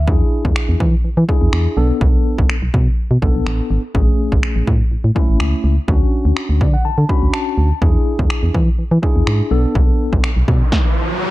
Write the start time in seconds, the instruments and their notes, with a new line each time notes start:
0.07 fm bass E2, tine electric piano D4 E4 G#4, kick
0.45 fm bass E2, kick
0.56 finger snap
0.69 fm bass E2
0.80 fm bass E3, kick
1.04 fm bass E3
1.17 fm bass E3
1.28 tine electric piano D4 E4 G#4, kick
1.41 fm bass E2
1.53 fm bass E2, finger snap
1.77 fm bass B1, tine electric piano B3 D4 A4
2.01 fm bass B1, kick
2.38 fm bass B1, kick
2.50 finger snap
2.62 fm bass B1
2.74 fm bass B2, kick
3.11 fm bass B2
3.22 fm bass B1, tine electric piano B3 D4 A4, kick
3.35 fm bass B1
3.46 fm bass A1, finger snap
3.71 fm bass G#1
3.94 fm bass A1, tine electric piano A3 C#4 G#4, kick
4.32 fm bass A1, kick
4.43 finger snap
4.56 fm bass A1
4.67 fm bass A2, kick
4.91 fm bass A2
5.04 fm bass A2
5.15 tine electric piano A3 C#4 E4, kick
5.28 fm bass A1
5.40 fm bass C#2, finger snap
5.64 fm bass C#2
5.88 fm bass D2, tine electric piano C#4 D4 F#4, kick
6.25 fm bass D2
6.37 finger snap
6.49 fm bass D2
6.61 fm bass D3, tine electric piano D5, kick
6.74 tine electric piano F#5
6.85 fm bass D3, tine electric piano A5
6.98 fm bass D3
7.09 tine electric piano C#4 D4 F#4 B5, kick
7.22 fm bass D2
7.33 tine electric piano A5, finger snap
7.58 fm bass D2
7.81 fm bass E2, tine electric piano D4 E4 G#4, kick
8.19 fm bass E2, kick
8.30 finger snap
8.43 fm bass E2
8.54 fm bass E3, kick
8.79 fm bass E3
8.91 fm bass E3
9.02 tine electric piano D4 E4 G#4, kick
9.16 fm bass E2
9.27 fm bass G#2, finger snap
9.51 fm bass B1, tine electric piano B3 D4 A4
9.75 fm bass B1, kick, riser
10.13 fm bass B1, kick
10.24 finger snap
10.37 fm bass B1
10.48 fm bass B2, kick
10.72 kick, snare